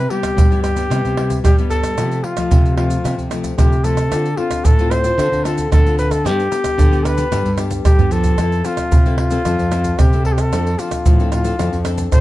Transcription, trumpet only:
0.00 0.12 B4 loud
0.10 0.62 G4 medium
0.63 1.40 G4 medium
1.45 1.57 G4 medium
1.70 2.26 A4 loud
2.24 2.77 F4 medium
2.77 3.27 F4 medium
3.58 3.86 G4 medium
3.84 4.39 A4 loud
4.38 4.66 F4 medium
4.65 4.93 A4 medium
4.91 5.46 C5 loud
5.44 5.71 A4 medium
5.72 5.97 A4 medium
5.99 6.13 B4 medium
6.12 6.28 A4 medium
6.26 7.07 G4 loud
7.06 7.59 B4 medium
7.86 8.13 G4 medium
8.12 8.67 A4 loud
8.66 9.18 F4 medium
9.19 10.00 F4 medium
9.99 10.26 G4 medium
10.26 10.34 A4 medium
10.33 10.42 G4 medium
10.41 10.81 A4 loud
10.80 11.32 F4 medium
11.33 11.82 F4 medium
12.13 12.21 C5 loud

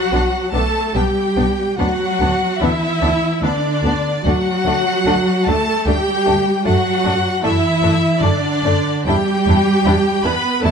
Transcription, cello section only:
0.00 0.48 F#3 medium
0.53 0.94 A3 medium
0.95 1.78 G3 medium
1.79 2.59 F#3 medium
2.61 3.42 E3 medium
3.43 4.25 D3 medium
4.25 5.44 F#3 loud
5.47 5.87 A3 medium
5.87 6.66 G3 medium
6.66 7.42 F#3 medium
7.43 8.20 E3 medium
8.21 9.07 D3 medium
9.07 10.24 G3 loud
10.25 10.63 B3 medium
10.64 10.71 A3 medium

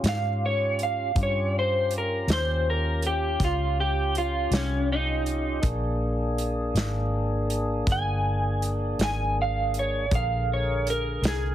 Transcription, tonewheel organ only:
0.00 1.12 C#4 medium
0.00 1.12 F4 medium
0.00 1.12 G4 medium
1.17 5.60 C#4 medium
1.17 5.60 F4 medium
1.17 5.60 G4 medium
5.62 10.07 A#3 medium
5.62 10.06 D4 medium
5.62 10.06 G#4 medium
10.12 11.55 D3 medium
10.12 11.55 G#4 medium
10.12 11.55 A#4 medium

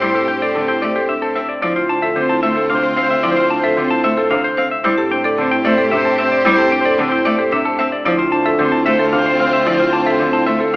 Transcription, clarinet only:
0.09 0.29 C5 medium
0.37 0.57 C5 medium
0.65 0.85 C5 medium
0.93 1.13 C5 soft
1.21 1.41 C5 soft
1.63 1.82 C5 soft
1.91 2.10 C5 soft
2.19 2.39 C5 medium
2.46 2.66 C5 medium
2.75 2.94 C5 medium
3.03 3.22 C5 medium
3.31 3.50 C5 medium
3.59 3.79 C5 medium
3.87 4.06 C5 medium
4.15 4.35 C5 medium
4.43 4.62 C5 soft
4.85 5.04 C5 soft
5.12 5.32 C5 medium
5.41 5.60 C5 medium
5.68 5.88 C5 medium
5.96 6.16 C5 medium
6.25 6.44 C5 medium
6.53 6.72 C5 medium
6.81 7.00 C5 medium
7.08 7.28 C5 medium
7.37 7.56 C5 medium
7.65 7.84 C5 soft
8.06 8.25 C5 medium
8.34 8.53 C5 medium
8.62 8.82 C5 medium
8.90 9.09 C5 medium
9.18 9.37 C5 medium
9.46 9.65 C5 medium
9.74 9.93 C5 medium
10.02 10.21 C5 medium
10.30 10.50 C5 medium
10.58 10.76 C5 soft

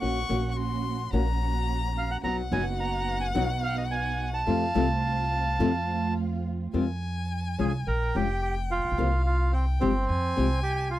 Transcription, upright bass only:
0.02 0.25 A#1 medium
0.30 1.09 A#1 medium
1.13 2.18 A#1 medium
2.24 2.47 B1 medium
2.52 3.31 F#1 medium
3.35 4.42 B1 medium
4.47 4.71 F2 medium
4.75 5.56 C2 loud
5.59 6.69 F2 medium
6.74 7.55 F2 medium
7.59 7.83 C2 medium
7.87 8.11 A#1 medium
8.15 8.77 F1 medium
8.77 8.83 A1 soft
8.84 8.91 A#1 medium
8.91 8.97 B1 medium
8.98 9.77 C2 medium
9.82 10.05 G1 medium
10.09 10.32 F2 medium
10.38 10.99 C2 medium

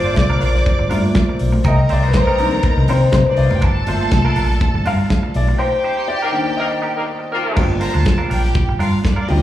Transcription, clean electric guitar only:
0.04 0.15 D4 medium
0.04 0.15 F4 medium
0.04 0.17 C5 medium
0.16 muted clean electric guitar stroke soft
0.30 0.39 D4 medium
0.30 0.40 F4 medium
0.30 0.40 A#4 medium
0.41 0.55 D4 medium
0.41 0.54 F4 medium
0.41 0.53 A#4 medium
0.54 muted clean electric guitar stroke soft
0.66 muted clean electric guitar stroke soft
0.79 muted clean electric guitar stroke soft
0.90 1.08 D4 medium
0.90 1.03 F4 medium
0.90 1.02 A#4 medium
1.03 muted clean electric guitar stroke medium
1.15 muted clean electric guitar stroke soft
1.29 muted clean electric guitar stroke soft
1.52 muted clean electric guitar stroke soft
1.65 1.82 C4 medium
1.65 1.77 D#4 medium
1.65 1.76 A#4 loud
1.77 muted clean electric guitar stroke soft
1.90 2.03 C4 medium
1.90 2.02 D#4 medium
1.90 2.02 C5 medium
2.03 2.14 C4 medium
2.03 2.14 D#4 medium
2.03 2.15 C5 medium
2.15 muted clean electric guitar stroke soft
2.27 2.38 C4 medium
2.27 2.38 D#4 medium
2.27 2.39 A#4 medium
2.39 2.53 C4 medium
2.39 2.52 D#4 medium
2.39 2.51 A#4 medium
2.52 muted clean electric guitar stroke soft
2.63 muted clean electric guitar stroke soft
2.78 muted clean electric guitar stroke soft
2.89 3.06 C4 medium
2.89 3.02 D#4 medium
2.89 3.01 A#4 medium
3.03 muted clean electric guitar stroke soft
3.14 muted clean electric guitar stroke soft
3.26 muted clean electric guitar stroke soft
3.51 muted clean electric guitar stroke medium
3.61 3.79 D4 medium
3.61 3.75 F4 loud
3.61 3.75 A#4 medium
3.76 muted clean electric guitar stroke medium
3.88 4.00 D4 medium
3.88 4.00 F4 medium
3.88 3.99 C5 medium
4.00 4.11 D4 medium
4.00 4.12 F4 medium
4.00 4.12 C5 medium
4.12 muted clean electric guitar stroke soft
4.25 4.35 D4 medium
4.25 4.36 F4 medium
4.25 4.36 A#4 loud
4.36 4.50 D4 medium
4.36 4.49 F4 medium
4.36 4.49 A#4 medium
4.50 muted clean electric guitar stroke soft
4.62 muted clean electric guitar stroke soft
4.75 muted clean electric guitar stroke soft
4.85 5.03 D4 medium
4.85 4.99 F4 medium
4.85 4.98 A#4 medium
4.99 muted clean electric guitar stroke soft
5.10 muted clean electric guitar stroke soft
5.23 muted clean electric guitar stroke soft
5.48 muted clean electric guitar stroke soft
5.58 5.76 D#4 medium
5.58 5.72 G4 medium
5.58 5.71 A#4 medium
5.72 muted clean electric guitar stroke soft
5.84 5.97 D#4 medium
5.84 5.97 G4 medium
5.84 5.96 C5 medium
5.97 6.08 D#4 medium
5.97 6.09 G4 medium
5.97 6.09 C5 medium
6.09 muted clean electric guitar stroke medium
6.22 6.32 D#4 medium
6.22 6.33 G4 medium
6.22 6.34 A#4 medium
6.34 6.47 D#4 medium
6.34 6.46 G4 medium
6.34 6.46 A#4 medium
6.47 muted clean electric guitar stroke soft
6.58 muted clean electric guitar stroke soft
6.71 muted clean electric guitar stroke soft
6.82 6.99 D#4 medium
6.82 6.94 G4 medium
6.82 6.94 A#4 medium
6.95 muted clean electric guitar stroke soft
7.06 muted clean electric guitar stroke soft
7.19 muted clean electric guitar stroke soft
7.44 muted clean electric guitar stroke soft
7.56 7.73 D4 medium
7.56 7.69 F4 medium
7.56 7.68 A#4 loud
7.69 muted clean electric guitar stroke medium
7.80 7.93 D4 medium
7.80 7.93 F4 medium
7.80 7.93 C5 medium
7.94 8.04 D4 medium
7.94 8.05 F4 medium
7.94 8.06 C5 medium
8.05 muted clean electric guitar stroke soft
8.18 8.29 D4 medium
8.18 8.29 F4 medium
8.18 8.29 A#4 medium
8.30 8.44 D4 medium
8.30 8.44 F4 medium
8.30 8.43 A#4 medium
8.44 muted clean electric guitar stroke soft
8.56 muted clean electric guitar stroke soft
8.69 muted clean electric guitar stroke soft
8.79 8.96 D4 medium
8.79 8.92 F4 medium
8.79 8.92 A#4 medium
8.93 muted clean electric guitar stroke soft
9.04 muted clean electric guitar stroke soft
9.16 9.27 D4 medium
9.16 9.27 F4 medium
9.16 9.28 A#4 medium
9.28 muted clean electric guitar stroke soft

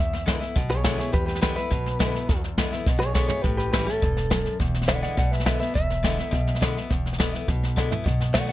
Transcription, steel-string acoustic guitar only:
0.00 0.53 E2 medium
0.26 0.40 D3 medium
0.26 0.41 G#3 medium
0.26 0.41 B3 medium
0.26 0.39 E4 medium
0.40 0.56 B3 soft
0.40 0.55 E4 medium
0.56 1.11 B2 loud
0.84 0.98 D3 medium
0.84 0.99 G#3 medium
0.84 0.98 B3 loud
0.84 0.97 E4 loud
0.98 1.13 B3 soft
0.98 1.13 E4 medium
1.13 1.68 E2 medium
1.41 1.56 D3 medium
1.41 1.56 G#3 medium
1.41 1.56 B3 loud
1.41 1.54 E4 medium
1.56 1.71 B3 soft
1.56 1.70 E4 medium
1.71 2.26 B2 loud
1.99 2.14 D3 medium
1.99 2.14 G#3 medium
1.99 2.14 B3 medium
1.99 2.13 E4 medium
2.15 2.30 B3 soft
2.15 2.29 E4 medium
2.29 2.84 E2 medium
2.58 2.72 D3 medium
2.58 2.72 G#3 medium
2.58 2.72 B3 loud
2.58 2.71 E4 medium
2.72 2.87 B3 soft
2.72 2.86 E4 medium
2.87 3.42 B2 medium
3.15 3.29 D3 medium
3.15 3.29 G#3 medium
3.15 3.30 B3 medium
3.15 3.28 E4 medium
3.30 3.44 B3 medium
3.30 3.44 E4 medium
3.44 3.99 A2 medium
3.73 3.87 E3 medium
3.73 3.87 G3 medium
3.73 3.88 C#4 medium
3.73 3.86 E4 medium
3.88 4.03 C#4 soft
3.88 4.02 E4 medium
4.02 4.30 G2 medium
4.30 4.58 F#2 medium
4.60 5.15 E2 medium
4.88 5.16 D3 medium
4.88 5.16 G#3 medium
4.88 5.16 B3 medium
4.88 5.16 E4 medium
5.17 5.72 B2 loud
5.45 5.60 D3 medium
5.45 5.60 G#3 medium
5.45 5.60 B3 medium
5.45 5.58 E4 medium
5.60 5.75 B3 medium
5.60 5.74 E4 medium
5.74 6.29 E2 medium
6.03 6.17 D3 medium
6.03 6.17 G#3 medium
6.03 6.17 B3 medium
6.03 6.15 E4 medium
6.16 6.32 B3 soft
6.16 6.31 E4 medium
6.31 6.87 B2 loud
6.61 6.75 D3 medium
6.61 6.76 G#3 medium
6.61 6.76 B3 medium
6.61 6.76 E4 loud
6.77 6.91 B3 soft
6.77 6.90 E4 medium
6.90 7.45 E2 medium
7.18 7.33 D3 medium
7.18 7.33 G#3 medium
7.18 7.33 B3 medium
7.18 7.32 E4 medium
7.33 7.48 B3 soft
7.33 7.47 E4 medium
7.48 8.03 B2 loud
7.76 7.90 D3 medium
7.76 7.91 G#3 medium
7.76 7.91 B3 medium
7.76 7.90 E4 loud
7.91 8.06 B3 medium
7.91 8.05 E4 medium
8.04 8.52 B2 medium
8.34 8.48 D#3 medium
8.34 8.48 A3 medium
8.34 8.48 B3 medium
8.34 8.45 F#4 medium
8.47 8.52 B3 soft
8.47 8.52 F#4 medium

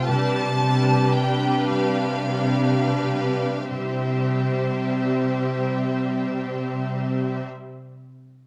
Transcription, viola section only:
0.10 0.59 G3 soft
0.10 0.59 D4 soft
0.60 2.30 G3 soft
0.60 2.30 D4 soft
2.34 3.68 G3 soft
2.34 3.68 D4 soft
3.70 7.45 G3 soft
3.70 7.45 C4 soft

